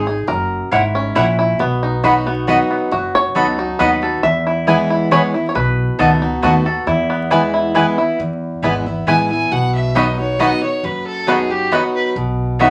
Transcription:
Already playing: upright bass G#1, five-string banjo D#4
0.06 steel-string acoustic guitar D#4 G#4, five-string banjo G#4
0.27 upright bass F#1, steel-string acoustic guitar F#2, five-string banjo A#4
0.71 upright bass G#1, steel-string acoustic guitar G#2, mandolin A#3 E4 C#5 F#5, five-string banjo E4
0.95 five-string banjo C#4
1.15 upright bass A#1, steel-string acoustic guitar A#2, mandolin A#3 E4 C#5 F#5, five-string banjo E4
1.39 five-string banjo E4
1.59 upright bass B1, steel-string acoustic guitar B2, five-string banjo B3
1.83 five-string banjo D#4
2.03 steel-string acoustic guitar F#3 B3 D#4 F#4, mandolin B3 F#4 D#5 B5, five-string banjo F#4
2.26 five-string banjo B3, steel-string acoustic guitar D#4 F#4
2.47 steel-string acoustic guitar F#3 B3 D#4 F#4, mandolin B3 F#4 D#5 B5, five-string banjo F#4
2.71 five-string banjo B3
2.91 upright bass F#1, steel-string acoustic guitar F#2, five-string banjo F#4
3.15 five-string banjo C#5
3.35 upright bass C#2, steel-string acoustic guitar F#3 B3 D#4 F#4, mandolin B3 F#4 D#5 B5, five-string banjo A4
3.58 five-string banjo D#4, steel-string acoustic guitar D#4 F#4
3.79 upright bass D#2, steel-string acoustic guitar F#3 B3 D#4 F#4, mandolin B3 F#4 D#5 B5, five-string banjo B4
4.02 steel-string acoustic guitar D#4 F#4, five-string banjo A4
4.23 upright bass E2, steel-string acoustic guitar E2, five-string banjo E5
4.47 five-string banjo E4
4.67 steel-string acoustic guitar E3 G#3 B3 E4, mandolin B3 E4 B4 G#5, five-string banjo E4
4.90 five-string banjo E4
5.11 steel-string acoustic guitar E3 G#3 B3 E4, mandolin B3 E4 B4 G#5, five-string banjo C#5
5.34 steel-string acoustic guitar B3 E4, five-string banjo E4
5.49 five-string banjo C#5
5.55 upright bass B1, steel-string acoustic guitar B2, five-string banjo B4
5.99 upright bass C#2, steel-string acoustic guitar D#3 A3 B3 F#4, mandolin B3 F#4 D#5 A5, five-string banjo A4
6.22 steel-string acoustic guitar B3 F#4, five-string banjo D#4
6.42 upright bass D#2, steel-string acoustic guitar D#3 A3 B3 F#4, mandolin B3 F#4 D#5 A5, five-string banjo F#4
6.65 steel-string acoustic guitar B3 F#4, five-string banjo A4
6.87 upright bass E2, steel-string acoustic guitar E2, five-string banjo E4
7.10 five-string banjo B3
7.31 steel-string acoustic guitar E3 G#3 B3 E4, mandolin B3 E4 B4 G#5, five-string banjo E4
7.54 five-string banjo E4
7.75 steel-string acoustic guitar E3 G#3 B3 E4, mandolin B3 E4 B4 G#5, five-string banjo E4
7.98 steel-string acoustic guitar B3 E4, five-string banjo E4
8.19 upright bass E2, steel-string acoustic guitar E2
8.62 upright bass G#1, steel-string acoustic guitar E3 G#3 B3 E4, mandolin B3 E4 B4 G#5, five-string banjo B3 E4
8.86 steel-string acoustic guitar B3 E4
9.07 upright bass A1, steel-string acoustic guitar E3 G#3 B3 E4, mandolin B3 E4 B4 G#5, five-string banjo B3 E4, fiddle G#5
9.30 steel-string acoustic guitar B3 E4, fiddle G#5
9.51 upright bass B1, steel-string acoustic guitar B2, fiddle F#5
9.74 fiddle E5
9.95 steel-string acoustic guitar F#3 B3 D#4 F#4, mandolin B3 F#4 D#5 B5, five-string banjo B3 D#4 F#4, fiddle D#5
10.18 steel-string acoustic guitar D#4 F#4, fiddle C#5
10.39 steel-string acoustic guitar F#3 B3 D#4 F#4, mandolin B3 F#4 D#5 B5, five-string banjo B3 D#4 F#4, fiddle D#5
10.62 steel-string acoustic guitar D#4 F#4, fiddle C#5
10.83 upright bass F#1, steel-string acoustic guitar F#2, fiddle B4
11.07 fiddle A4
11.27 steel-string acoustic guitar F#3 B3 D#4 F#4, mandolin B3 F#4 D#5 B5, five-string banjo B3 D#4 F#4, fiddle G#4
11.50 steel-string acoustic guitar D#4 F#4, fiddle G4
11.71 steel-string acoustic guitar F#3 B3 D#4 F#4, mandolin B3 F#4 D#5 B5, five-string banjo B3 D#4 F#4, fiddle F#4
11.95 fiddle B4
12.16 upright bass B1, steel-string acoustic guitar B2
12.59 steel-string acoustic guitar F#3 B3 D#4 F#4, mandolin B3 F#4 D#5 B5, five-string banjo B3 D#4 F#4, fiddle E5

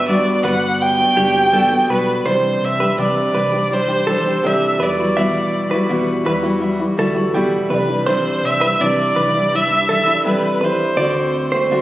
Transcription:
Already playing: fingered electric bass G1, upright piano G3 B3 D4 G4 B4, clean electric guitar B4
0.08 steel-string acoustic guitar G3 B3 D4 F#4, violin D5
0.44 fingered electric bass G1, steel-string acoustic guitar G3 B3 D4 F#4, clean electric guitar B4, violin F#5
0.82 violin G5
0.98 steel-string acoustic guitar B3 D4 F#4
1.16 fingered electric bass F#1, steel-string acoustic guitar G3 B3 D4 F#4, clean electric guitar G4
1.34 steel-string acoustic guitar B3 F#4
1.52 steel-string acoustic guitar G3 B3 D4 F#4, clean electric guitar A4
1.70 steel-string acoustic guitar B3 D4 F#4
1.87 fingered electric bass B1, steel-string acoustic guitar G3 B3 D4 F#4, clean electric guitar B4, violin B4
2.23 fingered electric bass C2, steel-string acoustic guitar C3 E3 G3 D4 G4, upright piano G3 D4 E4 C5, clean electric guitar C5
2.27 violin C5
2.62 fingered electric bass C2, violin E5
2.79 steel-string acoustic guitar G3 D4 G4, clean electric guitar B4
2.97 steel-string acoustic guitar C3 E3 G3 D4 G4, fingered electric bass C3, violin D5
3.34 fingered electric bass C2, steel-string acoustic guitar E3 G3 D4 G4, clean electric guitar B4
3.52 steel-string acoustic guitar G3 D4 G4
3.70 steel-string acoustic guitar E3 G3 D4 G4, violin C5
3.88 steel-string acoustic guitar G3 D4 G4
4.06 steel-string acoustic guitar E3 G3 D4 G4, clean electric guitar A4
4.12 violin C5
4.25 steel-string acoustic guitar G3 D4 G4
4.43 steel-string acoustic guitar C3 E3 G3 D4 G4, clean electric guitar G4, violin E5
4.77 fingered electric bass E2, steel-string acoustic guitar E3, upright piano G3 E4 F#4, clean electric guitar B4
4.81 steel-string acoustic guitar G3 E4 F#4, upright piano B4, violin D5
4.98 steel-string acoustic guitar E3 G3 E4 F#4
5.17 steel-string acoustic guitar E2 B2 E3 G3 E4 F#4, clean electric guitar E5
5.71 steel-string acoustic guitar E3 G3 E4 F#4, clean electric guitar B4
5.89 steel-string acoustic guitar E2 B2 E3 G3 E4 F#4
6.25 fingered electric bass E2, steel-string acoustic guitar E3 G3 E4 F#4, clean electric guitar B4
6.43 steel-string acoustic guitar E3 G3 E4 F#4
6.60 steel-string acoustic guitar E3 G3 E4 F#4
6.79 steel-string acoustic guitar E3 G3 E4 F#4
6.97 fingered electric bass D2, steel-string acoustic guitar E3 G3 E4 F#4, clean electric guitar A4
7.15 steel-string acoustic guitar E3 G3 E4 F#4
7.33 steel-string acoustic guitar E2 B2 E3 G3 E4 F#4, clean electric guitar G4
7.69 fingered electric bass C2, steel-string acoustic guitar E3 G3 D4 E4, upright piano C4 E4 G4, clean electric guitar B4, violin B4
7.73 upright piano D5
7.87 steel-string acoustic guitar G3 D4 E4
8.06 steel-string acoustic guitar C3 E3 G3 D4 E4, clean electric guitar C5, violin C5
8.43 fingered electric bass C2, violin E5
8.61 steel-string acoustic guitar G3 D4 E4, clean electric guitar B4
8.80 steel-string acoustic guitar C3 E3 G3 D4 E4, fingered electric bass C3, violin D5
9.16 fingered electric bass C2, steel-string acoustic guitar E3 G3 D4 E4, clean electric guitar B4
9.34 steel-string acoustic guitar G3 D4 E4
9.52 steel-string acoustic guitar E3 G3 D4 E4, violin E5
9.71 steel-string acoustic guitar G3 D4 E4
9.88 steel-string acoustic guitar E3 G3 D4 E4, clean electric guitar A4
9.93 violin E5
10.06 steel-string acoustic guitar G3 D4 E4
10.24 steel-string acoustic guitar C3 E3 G3 D4 E4, clean electric guitar G4, violin B4
10.60 steel-string acoustic guitar E3 G3 D4, upright piano C4 E4 G4 E5, clean electric guitar B4
10.64 steel-string acoustic guitar E4, violin C5
10.96 fingered electric bass D2, steel-string acoustic guitar D3 A3 C4 F#4, upright piano C4 F#4 A4, clean electric guitar D5
11.00 upright piano D5
11.52 steel-string acoustic guitar A3 C4 F#4, clean electric guitar C5
11.71 steel-string acoustic guitar D3 A3 C4 F#4

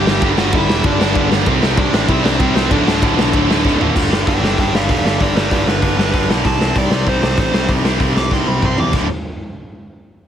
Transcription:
Already playing: distorted electric guitar G2 D3 G3 B3 D4 G4, lead electric guitar G4 G5
0.07 picked electric bass G1, overdriven electric guitar G2 D3 G3, snare
0.22 picked electric bass G1, distorted electric guitar G2 D3 G3 B3 D4 G4, overdriven electric guitar G2 D3 G3, lead electric guitar G4 G5, kick, ride
0.37 picked electric bass G1, overdriven electric guitar G2 D3 G3, lead electric guitar F#4 F#5, snare
0.53 picked electric bass G1, overdriven electric guitar G2 D3 G3, lead electric guitar E4 E5, kick, ride
0.69 picked electric bass E1, overdriven electric guitar G2 D3 G3, snare
0.84 picked electric bass G1, overdriven electric guitar G2 D3 G3, lead electric guitar D4 D5, kick, ride
0.99 picked electric bass G1, overdriven electric guitar G2 D3 G3, distorted electric guitar G2 D3 G3 B3 D4 G4, snare
1.14 picked electric bass G1, distorted electric guitar G2 D3 G3 B3 D4 G4, overdriven electric guitar G2 D3 G3, kick, ride
1.31 picked electric bass G1, overdriven electric guitar G2 D3 G3, snare
1.45 picked electric bass C2, distorted electric guitar C3 G3 C4 E4 G4 C5, overdriven electric guitar C3 G3 C4, kick, ride
1.62 picked electric bass C2, overdriven electric guitar C3 G3 C4, snare
1.77 picked electric bass C2, overdriven electric guitar C3 G3 C4, lead electric guitar D4 D5, kick, ride
1.93 picked electric bass A1, overdriven electric guitar C3 G3 C4, snare
2.07 picked electric bass C2, overdriven electric guitar C3 G3 C4, lead electric guitar E4 E5, kick, ride
2.23 picked electric bass C2, overdriven electric guitar C3 G3 C4, distorted electric guitar C3 G3 C4 E4 G4 C5, lead electric guitar D4 D5, snare
2.39 picked electric bass C2, distorted electric guitar C3 G3 C4 E4 G4 C5, overdriven electric guitar C3 G3 C4, lead electric guitar C4 C5, kick, ride
2.54 picked electric bass C2, overdriven electric guitar C3 G3 C4, lead electric guitar C4 C5, snare
2.69 picked electric bass D1, distorted electric guitar D2 A2 D3 A3 F#4, overdriven electric guitar D2 A2 D3, lead electric guitar D4 D5, kick, ride
2.85 picked electric bass D1, overdriven electric guitar D2 A2 D3, snare
3.01 picked electric bass D1, overdriven electric guitar D2 A2 D3, kick, ride
3.16 picked electric bass B1, overdriven electric guitar D2 A2 D3, snare
3.32 picked electric bass D1, overdriven electric guitar D2 A2 D3, kick, ride
3.48 picked electric bass D1, overdriven electric guitar D2 A2 D3, distorted electric guitar D2 A2 D3 A3 F#4, snare
3.64 picked electric bass D1, distorted electric guitar D2 A2 D3 A3 F#4, overdriven electric guitar D2 A2 D3, kick, snare
3.80 picked electric bass D1, overdriven electric guitar D2 A2 D3, floor tom
3.96 picked electric bass G1, overdriven electric guitar G2 D3 G3, kick, crash
4.10 overdriven electric guitar G2 D3 G3, snare
4.26 picked electric bass G1, overdriven electric guitar G2 D3 G3, lead electric guitar B4 G5, kick, open hi-hat
4.41 picked electric bass G1, overdriven electric guitar G2 D3 G3, lead electric guitar B4 G5, snare
4.58 picked electric bass G1, overdriven electric guitar G2 D3 G3, lead electric guitar B4 G5, kick, open hi-hat
4.73 picked electric bass G1, overdriven electric guitar G2 D3 G3, lead electric guitar D5 F5, snare
4.88 picked electric bass E1, overdriven electric guitar G2 D3 G3, lead electric guitar D5 F5, kick, open hi-hat
5.04 picked electric bass G1, overdriven electric guitar G2 D3 G3, lead electric guitar D5 F5, snare
5.20 picked electric bass G1, overdriven electric guitar G2 D3 G3, lead electric guitar B4 D5, kick, open hi-hat
5.35 picked electric bass G1, overdriven electric guitar G2 D3 G3, lead electric guitar B4 D5, snare
5.51 picked electric bass G1, overdriven electric guitar G2 D3 G3, lead electric guitar B4 D5, kick, open hi-hat
5.66 picked electric bass G1, overdriven electric guitar G2 D3 G3, lead electric guitar B4, snare
5.81 picked electric bass G1, overdriven electric guitar G2 D3 G3, kick, open hi-hat
5.97 picked electric bass G1, overdriven electric guitar G2 D3 G3, snare
6.13 picked electric bass G1, overdriven electric guitar G2 D3 G3, kick, open hi-hat
6.28 picked electric bass B1, overdriven electric guitar G2 D3 G3, snare
6.44 picked electric bass C2, overdriven electric guitar C3 G3 C4, lead electric guitar A5, kick, open hi-hat
6.59 overdriven electric guitar C3 G3 C4, snare
6.75 picked electric bass C2, overdriven electric guitar C3 G3 C4, lead electric guitar D5, kick, open hi-hat
6.90 picked electric bass C2, overdriven electric guitar C3 G3 C4, snare
7.05 picked electric bass C2, overdriven electric guitar C3 G3 C4, lead electric guitar C5, kick, open hi-hat
7.21 picked electric bass C2, overdriven electric guitar C3 G3 C4, snare
7.36 picked electric bass A1, overdriven electric guitar C3 G3 C4, lead electric guitar C5, kick, open hi-hat
7.53 picked electric bass C2, overdriven electric guitar C3 G3 C4, snare
7.68 picked electric bass C2, overdriven electric guitar C3 G3 C4, kick, open hi-hat
7.83 picked electric bass C2, overdriven electric guitar C3 G3 C4, snare
8.00 picked electric bass C2, overdriven electric guitar C3 G3 C4, kick, open hi-hat
8.15 picked electric bass C2, overdriven electric guitar C3 G3 C4, lead electric guitar D6, snare
8.31 picked electric bass C2, overdriven electric guitar C3 G3 C4, lead electric guitar C6, kick, snare
8.47 picked electric bass C2, overdriven electric guitar C3 G3 C4, lead electric guitar B5
8.61 picked electric bass C2, overdriven electric guitar C3 G3 C4, lead electric guitar C6, kick, mid tom
8.78 picked electric bass E2, overdriven electric guitar C3 G3 C4, lead electric guitar D6, floor tom
8.93 picked electric bass D1, overdriven electric guitar D2 A2 D3, kick, crash

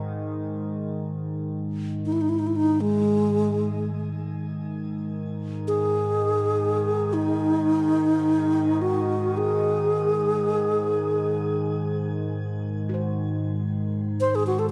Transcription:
Already playing: synth drone G#2 D#3, handpan D#4
2.05 bass flute D#4
2.12 bass flute E4
2.21 bass flute D#4
2.29 bass flute E4
2.39 bass flute D#4
2.47 bass flute E4
2.56 bass flute D#4
2.81 bass flute G#3
4.38 synth drone G#2 D#3
5.67 bass flute G#4
7.13 bass flute D#4
8.82 bass flute F#4
9.37 bass flute G#4
12.89 handpan F#4
12.94 handpan C5
14.20 bass flute C5
14.35 bass flute G#4
14.47 bass flute F#4
14.59 bass flute A4

